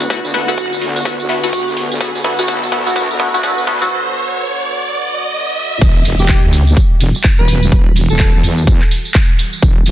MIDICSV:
0, 0, Header, 1, 8, 480
1, 0, Start_track
1, 0, Key_signature, 1, "minor"
1, 0, Tempo, 476190
1, 102, Time_signature, 4, 2, 24, 8
1, 9992, End_track
2, 0, Start_track
2, 0, Title_t, "Digital synth lead"
2, 0, Program_c, 0, 84
2, 486, Note_on_c, 0, 66, 85
2, 547, Note_off_c, 0, 66, 0
2, 582, Note_on_c, 0, 66, 72
2, 674, Note_off_c, 0, 66, 0
2, 1446, Note_on_c, 0, 66, 88
2, 1507, Note_off_c, 0, 66, 0
2, 1542, Note_on_c, 0, 66, 73
2, 1634, Note_off_c, 0, 66, 0
2, 2406, Note_on_c, 0, 66, 86
2, 2468, Note_off_c, 0, 66, 0
2, 2885, Note_on_c, 0, 66, 85
2, 2947, Note_off_c, 0, 66, 0
2, 3366, Note_on_c, 0, 66, 91
2, 3428, Note_off_c, 0, 66, 0
2, 3846, Note_on_c, 0, 66, 95
2, 3907, Note_off_c, 0, 66, 0
2, 6245, Note_on_c, 0, 67, 93
2, 6307, Note_off_c, 0, 67, 0
2, 7445, Note_on_c, 0, 71, 93
2, 7619, Note_off_c, 0, 71, 0
2, 8165, Note_on_c, 0, 69, 91
2, 8227, Note_off_c, 0, 69, 0
2, 8262, Note_on_c, 0, 69, 78
2, 8354, Note_off_c, 0, 69, 0
2, 9992, End_track
3, 0, Start_track
3, 0, Title_t, "Synth stab"
3, 0, Program_c, 1, 62
3, 102, Note_on_c, 1, 57, 93
3, 102, Note_on_c, 1, 66, 104
3, 103, Note_on_c, 1, 59, 89
3, 103, Note_on_c, 1, 64, 81
3, 197, Note_off_c, 1, 57, 0
3, 197, Note_off_c, 1, 66, 0
3, 198, Note_off_c, 1, 59, 0
3, 198, Note_off_c, 1, 64, 0
3, 343, Note_on_c, 1, 57, 81
3, 343, Note_on_c, 1, 59, 80
3, 343, Note_on_c, 1, 64, 74
3, 343, Note_on_c, 1, 66, 92
3, 452, Note_off_c, 1, 57, 0
3, 452, Note_off_c, 1, 59, 0
3, 452, Note_off_c, 1, 64, 0
3, 452, Note_off_c, 1, 66, 0
3, 486, Note_on_c, 1, 57, 89
3, 486, Note_on_c, 1, 66, 100
3, 487, Note_on_c, 1, 59, 82
3, 487, Note_on_c, 1, 64, 89
3, 550, Note_off_c, 1, 57, 0
3, 550, Note_off_c, 1, 59, 0
3, 550, Note_off_c, 1, 64, 0
3, 550, Note_off_c, 1, 66, 0
3, 1062, Note_on_c, 1, 57, 93
3, 1063, Note_on_c, 1, 59, 84
3, 1063, Note_on_c, 1, 64, 85
3, 1063, Note_on_c, 1, 66, 97
3, 1157, Note_off_c, 1, 57, 0
3, 1157, Note_off_c, 1, 59, 0
3, 1157, Note_off_c, 1, 64, 0
3, 1158, Note_off_c, 1, 66, 0
3, 1302, Note_on_c, 1, 66, 85
3, 1303, Note_on_c, 1, 57, 83
3, 1303, Note_on_c, 1, 59, 70
3, 1303, Note_on_c, 1, 64, 73
3, 1412, Note_off_c, 1, 57, 0
3, 1412, Note_off_c, 1, 59, 0
3, 1412, Note_off_c, 1, 64, 0
3, 1412, Note_off_c, 1, 66, 0
3, 1446, Note_on_c, 1, 57, 92
3, 1446, Note_on_c, 1, 59, 84
3, 1446, Note_on_c, 1, 64, 83
3, 1446, Note_on_c, 1, 66, 105
3, 1509, Note_off_c, 1, 57, 0
3, 1509, Note_off_c, 1, 59, 0
3, 1509, Note_off_c, 1, 64, 0
3, 1509, Note_off_c, 1, 66, 0
3, 2022, Note_on_c, 1, 57, 100
3, 2022, Note_on_c, 1, 59, 93
3, 2022, Note_on_c, 1, 64, 89
3, 2022, Note_on_c, 1, 66, 105
3, 2117, Note_off_c, 1, 57, 0
3, 2117, Note_off_c, 1, 59, 0
3, 2117, Note_off_c, 1, 64, 0
3, 2117, Note_off_c, 1, 66, 0
3, 2262, Note_on_c, 1, 57, 84
3, 2262, Note_on_c, 1, 59, 77
3, 2262, Note_on_c, 1, 64, 78
3, 2262, Note_on_c, 1, 66, 99
3, 2371, Note_off_c, 1, 57, 0
3, 2371, Note_off_c, 1, 59, 0
3, 2371, Note_off_c, 1, 64, 0
3, 2371, Note_off_c, 1, 66, 0
3, 2406, Note_on_c, 1, 57, 95
3, 2406, Note_on_c, 1, 59, 84
3, 2406, Note_on_c, 1, 64, 91
3, 2406, Note_on_c, 1, 66, 111
3, 2470, Note_off_c, 1, 57, 0
3, 2470, Note_off_c, 1, 59, 0
3, 2470, Note_off_c, 1, 64, 0
3, 2470, Note_off_c, 1, 66, 0
3, 2502, Note_on_c, 1, 59, 81
3, 2502, Note_on_c, 1, 64, 81
3, 2503, Note_on_c, 1, 57, 84
3, 2503, Note_on_c, 1, 66, 99
3, 2597, Note_off_c, 1, 59, 0
3, 2597, Note_off_c, 1, 64, 0
3, 2598, Note_off_c, 1, 57, 0
3, 2598, Note_off_c, 1, 66, 0
3, 2742, Note_on_c, 1, 57, 85
3, 2742, Note_on_c, 1, 59, 76
3, 2742, Note_on_c, 1, 64, 79
3, 2742, Note_on_c, 1, 66, 93
3, 2851, Note_off_c, 1, 64, 0
3, 2852, Note_off_c, 1, 57, 0
3, 2852, Note_off_c, 1, 59, 0
3, 2852, Note_off_c, 1, 66, 0
3, 2886, Note_on_c, 1, 59, 84
3, 2886, Note_on_c, 1, 64, 84
3, 2887, Note_on_c, 1, 57, 88
3, 2887, Note_on_c, 1, 66, 103
3, 2950, Note_off_c, 1, 57, 0
3, 2950, Note_off_c, 1, 59, 0
3, 2950, Note_off_c, 1, 64, 0
3, 2950, Note_off_c, 1, 66, 0
3, 2983, Note_on_c, 1, 57, 95
3, 2983, Note_on_c, 1, 59, 84
3, 2983, Note_on_c, 1, 64, 87
3, 2983, Note_on_c, 1, 66, 104
3, 3078, Note_off_c, 1, 57, 0
3, 3078, Note_off_c, 1, 59, 0
3, 3078, Note_off_c, 1, 64, 0
3, 3078, Note_off_c, 1, 66, 0
3, 3222, Note_on_c, 1, 57, 79
3, 3222, Note_on_c, 1, 59, 80
3, 3222, Note_on_c, 1, 64, 78
3, 3222, Note_on_c, 1, 66, 94
3, 3331, Note_off_c, 1, 57, 0
3, 3332, Note_off_c, 1, 59, 0
3, 3332, Note_off_c, 1, 64, 0
3, 3332, Note_off_c, 1, 66, 0
3, 3367, Note_on_c, 1, 57, 94
3, 3367, Note_on_c, 1, 59, 89
3, 3367, Note_on_c, 1, 64, 87
3, 3367, Note_on_c, 1, 66, 102
3, 3430, Note_off_c, 1, 57, 0
3, 3430, Note_off_c, 1, 59, 0
3, 3430, Note_off_c, 1, 64, 0
3, 3430, Note_off_c, 1, 66, 0
3, 3463, Note_on_c, 1, 57, 91
3, 3463, Note_on_c, 1, 59, 85
3, 3463, Note_on_c, 1, 64, 84
3, 3463, Note_on_c, 1, 66, 104
3, 3558, Note_off_c, 1, 57, 0
3, 3558, Note_off_c, 1, 59, 0
3, 3558, Note_off_c, 1, 64, 0
3, 3558, Note_off_c, 1, 66, 0
3, 3702, Note_on_c, 1, 57, 84
3, 3702, Note_on_c, 1, 59, 79
3, 3702, Note_on_c, 1, 64, 81
3, 3703, Note_on_c, 1, 66, 95
3, 3811, Note_off_c, 1, 57, 0
3, 3812, Note_off_c, 1, 59, 0
3, 3812, Note_off_c, 1, 64, 0
3, 3812, Note_off_c, 1, 66, 0
3, 3847, Note_on_c, 1, 57, 97
3, 3847, Note_on_c, 1, 59, 85
3, 3847, Note_on_c, 1, 64, 89
3, 3847, Note_on_c, 1, 66, 109
3, 3910, Note_off_c, 1, 57, 0
3, 3910, Note_off_c, 1, 59, 0
3, 3910, Note_off_c, 1, 64, 0
3, 3910, Note_off_c, 1, 66, 0
3, 9992, End_track
4, 0, Start_track
4, 0, Title_t, "Analog synth pad"
4, 0, Program_c, 2, 89
4, 0, Note_on_c, 2, 50, 79
4, 0, Note_on_c, 2, 59, 75
4, 0, Note_on_c, 2, 66, 89
4, 5822, Note_off_c, 2, 50, 0
4, 5822, Note_off_c, 2, 59, 0
4, 5822, Note_off_c, 2, 66, 0
4, 5861, Note_on_c, 2, 55, 70
4, 5861, Note_on_c, 2, 66, 88
4, 5862, Note_on_c, 2, 52, 77
4, 9992, Note_off_c, 2, 52, 0
4, 9992, Note_off_c, 2, 55, 0
4, 9992, Note_off_c, 2, 66, 0
4, 9992, End_track
5, 0, Start_track
5, 0, Title_t, "Wobble bass"
5, 0, Program_c, 3, 39
5, 102, Note_on_c, 3, 38, 104
5, 566, Note_off_c, 3, 38, 0
5, 582, Note_on_c, 3, 30, 97
5, 806, Note_off_c, 3, 30, 0
5, 823, Note_on_c, 3, 38, 94
5, 1183, Note_off_c, 3, 38, 0
5, 1206, Note_on_c, 3, 38, 99
5, 1423, Note_off_c, 3, 38, 0
5, 1446, Note_on_c, 3, 38, 94
5, 1663, Note_off_c, 3, 38, 0
5, 1686, Note_on_c, 3, 38, 97
5, 1903, Note_off_c, 3, 38, 0
5, 1925, Note_on_c, 3, 38, 100
5, 2006, Note_off_c, 3, 38, 0
5, 2021, Note_on_c, 3, 38, 102
5, 2486, Note_off_c, 3, 38, 0
5, 2502, Note_on_c, 3, 35, 103
5, 2726, Note_off_c, 3, 35, 0
5, 2741, Note_on_c, 3, 38, 88
5, 3103, Note_off_c, 3, 38, 0
5, 3125, Note_on_c, 3, 38, 100
5, 3343, Note_off_c, 3, 38, 0
5, 3366, Note_on_c, 3, 38, 97
5, 3686, Note_off_c, 3, 38, 0
5, 3702, Note_on_c, 3, 38, 93
5, 3926, Note_off_c, 3, 38, 0
5, 5861, Note_on_c, 3, 28, 98
5, 6086, Note_off_c, 3, 28, 0
5, 6101, Note_on_c, 3, 28, 102
5, 6463, Note_off_c, 3, 28, 0
5, 6485, Note_on_c, 3, 38, 96
5, 6806, Note_off_c, 3, 38, 0
5, 7061, Note_on_c, 3, 28, 100
5, 7182, Note_off_c, 3, 28, 0
5, 7445, Note_on_c, 3, 28, 106
5, 7766, Note_off_c, 3, 28, 0
5, 7781, Note_on_c, 3, 28, 98
5, 8143, Note_off_c, 3, 28, 0
5, 8166, Note_on_c, 3, 28, 100
5, 8486, Note_off_c, 3, 28, 0
5, 8501, Note_on_c, 3, 40, 88
5, 8863, Note_off_c, 3, 40, 0
5, 9701, Note_on_c, 3, 28, 105
5, 9926, Note_off_c, 3, 28, 0
5, 9941, Note_on_c, 3, 28, 100
5, 9992, Note_off_c, 3, 28, 0
5, 9992, End_track
6, 0, Start_track
6, 0, Title_t, "Impact"
6, 0, Program_c, 4, 103
6, 5862, Note_on_c, 4, 60, 76
6, 7782, Note_off_c, 4, 60, 0
6, 9992, End_track
7, 0, Start_track
7, 0, Title_t, "Riser"
7, 0, Program_c, 5, 103
7, 0, Note_on_c, 5, 60, 77
7, 5862, Note_off_c, 5, 60, 0
7, 9992, End_track
8, 0, Start_track
8, 0, Title_t, "Drums"
8, 3, Note_on_c, 9, 54, 70
8, 99, Note_off_c, 9, 54, 0
8, 99, Note_on_c, 9, 54, 58
8, 102, Note_on_c, 9, 36, 103
8, 200, Note_off_c, 9, 54, 0
8, 203, Note_off_c, 9, 36, 0
8, 249, Note_on_c, 9, 54, 39
8, 341, Note_on_c, 9, 46, 98
8, 350, Note_off_c, 9, 54, 0
8, 442, Note_off_c, 9, 46, 0
8, 492, Note_on_c, 9, 54, 76
8, 582, Note_off_c, 9, 54, 0
8, 582, Note_on_c, 9, 36, 110
8, 582, Note_on_c, 9, 54, 65
8, 683, Note_off_c, 9, 36, 0
8, 683, Note_off_c, 9, 54, 0
8, 730, Note_on_c, 9, 54, 38
8, 822, Note_on_c, 9, 46, 100
8, 831, Note_off_c, 9, 54, 0
8, 923, Note_off_c, 9, 46, 0
8, 966, Note_on_c, 9, 46, 57
8, 970, Note_on_c, 9, 54, 71
8, 1062, Note_on_c, 9, 36, 99
8, 1066, Note_off_c, 9, 46, 0
8, 1069, Note_off_c, 9, 54, 0
8, 1069, Note_on_c, 9, 54, 58
8, 1163, Note_off_c, 9, 36, 0
8, 1169, Note_off_c, 9, 54, 0
8, 1207, Note_on_c, 9, 54, 39
8, 1302, Note_on_c, 9, 46, 97
8, 1308, Note_off_c, 9, 54, 0
8, 1403, Note_off_c, 9, 46, 0
8, 1446, Note_on_c, 9, 54, 71
8, 1540, Note_off_c, 9, 54, 0
8, 1540, Note_on_c, 9, 54, 61
8, 1542, Note_on_c, 9, 36, 98
8, 1640, Note_off_c, 9, 54, 0
8, 1642, Note_off_c, 9, 36, 0
8, 1691, Note_on_c, 9, 54, 35
8, 1782, Note_on_c, 9, 46, 100
8, 1792, Note_off_c, 9, 54, 0
8, 1883, Note_off_c, 9, 46, 0
8, 1931, Note_on_c, 9, 54, 68
8, 2022, Note_on_c, 9, 36, 107
8, 2025, Note_off_c, 9, 54, 0
8, 2025, Note_on_c, 9, 54, 62
8, 2122, Note_off_c, 9, 36, 0
8, 2126, Note_off_c, 9, 54, 0
8, 2169, Note_on_c, 9, 54, 34
8, 2262, Note_on_c, 9, 36, 103
8, 2262, Note_on_c, 9, 46, 96
8, 2270, Note_off_c, 9, 54, 0
8, 2362, Note_off_c, 9, 36, 0
8, 2362, Note_off_c, 9, 46, 0
8, 2407, Note_on_c, 9, 54, 76
8, 2493, Note_off_c, 9, 54, 0
8, 2493, Note_on_c, 9, 54, 62
8, 2502, Note_on_c, 9, 36, 110
8, 2594, Note_off_c, 9, 54, 0
8, 2602, Note_off_c, 9, 36, 0
8, 2653, Note_on_c, 9, 54, 39
8, 2741, Note_on_c, 9, 36, 102
8, 2741, Note_on_c, 9, 46, 101
8, 2754, Note_off_c, 9, 54, 0
8, 2842, Note_off_c, 9, 36, 0
8, 2842, Note_off_c, 9, 46, 0
8, 2891, Note_on_c, 9, 54, 64
8, 2982, Note_on_c, 9, 36, 98
8, 2988, Note_off_c, 9, 54, 0
8, 2988, Note_on_c, 9, 54, 65
8, 3082, Note_off_c, 9, 36, 0
8, 3089, Note_off_c, 9, 54, 0
8, 3130, Note_on_c, 9, 54, 36
8, 3221, Note_on_c, 9, 36, 112
8, 3222, Note_on_c, 9, 46, 101
8, 3231, Note_off_c, 9, 54, 0
8, 3322, Note_off_c, 9, 36, 0
8, 3323, Note_off_c, 9, 46, 0
8, 3368, Note_on_c, 9, 54, 78
8, 3462, Note_on_c, 9, 36, 102
8, 3466, Note_off_c, 9, 54, 0
8, 3466, Note_on_c, 9, 54, 64
8, 3562, Note_off_c, 9, 36, 0
8, 3567, Note_off_c, 9, 54, 0
8, 3609, Note_on_c, 9, 54, 38
8, 3702, Note_on_c, 9, 36, 99
8, 3702, Note_on_c, 9, 46, 93
8, 3710, Note_off_c, 9, 54, 0
8, 3802, Note_off_c, 9, 36, 0
8, 3803, Note_off_c, 9, 46, 0
8, 3847, Note_on_c, 9, 54, 67
8, 3948, Note_off_c, 9, 54, 0
8, 5860, Note_on_c, 9, 54, 37
8, 5861, Note_on_c, 9, 36, 115
8, 5861, Note_on_c, 9, 49, 110
8, 5961, Note_off_c, 9, 54, 0
8, 5962, Note_off_c, 9, 36, 0
8, 5962, Note_off_c, 9, 49, 0
8, 6099, Note_on_c, 9, 54, 90
8, 6102, Note_on_c, 9, 46, 108
8, 6199, Note_off_c, 9, 54, 0
8, 6202, Note_off_c, 9, 46, 0
8, 6241, Note_on_c, 9, 54, 55
8, 6338, Note_on_c, 9, 39, 127
8, 6341, Note_on_c, 9, 36, 122
8, 6342, Note_off_c, 9, 54, 0
8, 6439, Note_off_c, 9, 39, 0
8, 6442, Note_off_c, 9, 36, 0
8, 6579, Note_on_c, 9, 54, 80
8, 6581, Note_on_c, 9, 46, 101
8, 6680, Note_off_c, 9, 54, 0
8, 6682, Note_off_c, 9, 46, 0
8, 6725, Note_on_c, 9, 54, 49
8, 6821, Note_on_c, 9, 36, 115
8, 6824, Note_off_c, 9, 54, 0
8, 6824, Note_on_c, 9, 54, 44
8, 6922, Note_off_c, 9, 36, 0
8, 6925, Note_off_c, 9, 54, 0
8, 7061, Note_on_c, 9, 46, 109
8, 7061, Note_on_c, 9, 54, 87
8, 7161, Note_off_c, 9, 54, 0
8, 7162, Note_off_c, 9, 46, 0
8, 7206, Note_on_c, 9, 54, 56
8, 7298, Note_on_c, 9, 39, 126
8, 7301, Note_on_c, 9, 36, 114
8, 7306, Note_off_c, 9, 54, 0
8, 7306, Note_on_c, 9, 54, 43
8, 7399, Note_off_c, 9, 39, 0
8, 7402, Note_off_c, 9, 36, 0
8, 7407, Note_off_c, 9, 54, 0
8, 7539, Note_on_c, 9, 54, 94
8, 7542, Note_on_c, 9, 46, 106
8, 7640, Note_off_c, 9, 54, 0
8, 7643, Note_off_c, 9, 46, 0
8, 7688, Note_on_c, 9, 54, 52
8, 7781, Note_on_c, 9, 36, 125
8, 7788, Note_off_c, 9, 54, 0
8, 7882, Note_off_c, 9, 36, 0
8, 8022, Note_on_c, 9, 46, 107
8, 8028, Note_on_c, 9, 54, 90
8, 8123, Note_off_c, 9, 46, 0
8, 8129, Note_off_c, 9, 54, 0
8, 8162, Note_on_c, 9, 54, 50
8, 8259, Note_on_c, 9, 39, 127
8, 8261, Note_on_c, 9, 36, 127
8, 8262, Note_off_c, 9, 54, 0
8, 8262, Note_on_c, 9, 54, 44
8, 8360, Note_off_c, 9, 39, 0
8, 8362, Note_off_c, 9, 36, 0
8, 8363, Note_off_c, 9, 54, 0
8, 8502, Note_on_c, 9, 46, 107
8, 8509, Note_on_c, 9, 54, 88
8, 8603, Note_off_c, 9, 46, 0
8, 8610, Note_off_c, 9, 54, 0
8, 8648, Note_on_c, 9, 54, 50
8, 8742, Note_on_c, 9, 36, 116
8, 8748, Note_off_c, 9, 54, 0
8, 8748, Note_on_c, 9, 54, 45
8, 8842, Note_off_c, 9, 36, 0
8, 8849, Note_off_c, 9, 54, 0
8, 8883, Note_on_c, 9, 39, 37
8, 8982, Note_on_c, 9, 46, 110
8, 8983, Note_on_c, 9, 54, 96
8, 8984, Note_off_c, 9, 39, 0
8, 9083, Note_off_c, 9, 46, 0
8, 9084, Note_off_c, 9, 54, 0
8, 9126, Note_on_c, 9, 54, 56
8, 9218, Note_off_c, 9, 54, 0
8, 9218, Note_on_c, 9, 54, 43
8, 9219, Note_on_c, 9, 39, 127
8, 9222, Note_on_c, 9, 36, 121
8, 9319, Note_off_c, 9, 54, 0
8, 9320, Note_off_c, 9, 39, 0
8, 9323, Note_off_c, 9, 36, 0
8, 9462, Note_on_c, 9, 46, 108
8, 9467, Note_on_c, 9, 54, 103
8, 9563, Note_off_c, 9, 46, 0
8, 9567, Note_off_c, 9, 54, 0
8, 9606, Note_on_c, 9, 54, 55
8, 9699, Note_off_c, 9, 54, 0
8, 9699, Note_on_c, 9, 54, 46
8, 9702, Note_on_c, 9, 36, 127
8, 9800, Note_off_c, 9, 54, 0
8, 9803, Note_off_c, 9, 36, 0
8, 9936, Note_on_c, 9, 54, 90
8, 9942, Note_on_c, 9, 46, 112
8, 9992, Note_off_c, 9, 46, 0
8, 9992, Note_off_c, 9, 54, 0
8, 9992, End_track
0, 0, End_of_file